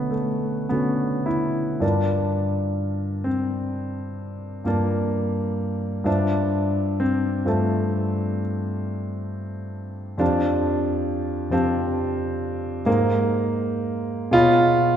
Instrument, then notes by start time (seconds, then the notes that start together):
grand piano
Already playing: D3 A3 B3 C#4 F#4 B4
0.11 A3
0.69 D3 A3 B3 C#4 F#4
1.26 E4
1.80 G2 D4 F4 A#4 D5 A5
3.24 C4
4.64 G2 A#3 F4 A#4 D5 A5
6.04 G2 D4 F4 C5 E5 A5
7.00 C4
7.45 G2 A3 F4 C5 E5 A5
10.18 F2 D4 G4 C5 F5 A5
11.50 F2 C4 G4 C5 F5 A5
12.85 G#2 A#3 G#4 C5 F5 A#5
14.31 B2 F4 G#4 C#5 D#5 B5